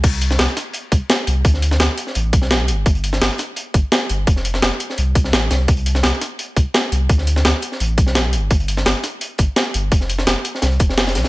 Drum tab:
CC |x---------------|----------------|----------------|----------------|
HH |xxx-xxx-x-x-x-x-|x-x-x-x-x-x-x-x-|xxx-xxx-x-x-x-x-|x-x-x-x-x-x-x-x-|
SD |---oo-o-----o---|-o-oo--o---oo---|---oo-o-----o---|-o-oo--o---oo-o-|
BD |o---------o-----|o---------o-----|o---------o-----|o---------o-----|

CC |----------------|----------------|----------------|----------------|
HH |xxx-xxx-x-x-x-x-|x-x-x-x-x-x-x-x-|xxx-xxx-x-x-x-x-|x-x-x-x-xxx-xxxx|
SD |---oo-o-----o---|-o-oo--o---oo---|---oo-o-----o---|-o-oo--oo--ooooo|
BD |o---------o-----|o---------o-----|o---------o-----|o---------o-----|